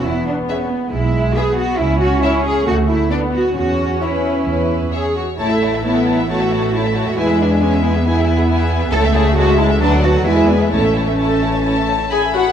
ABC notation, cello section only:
X:1
M:4/4
L:1/8
Q:1/4=135
K:A
V:1 name="Cello section"
E D C B, E2 G F | E F E G F E D F | F2 E4 G F | E2 E2 F2 E F |
E D C B, E2 z2 | A G F E D F E B, | C6- C z |]